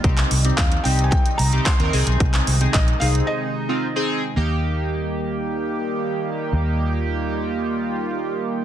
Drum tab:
HH |xxoxxxoxxxoxxxox|xxoxxxox--------|----------------|----------------|
CP |-x--x-------x---|-x--x-----------|----------------|----------------|
BD |o---o---o---o---|o---o-----------|----------------|----------------|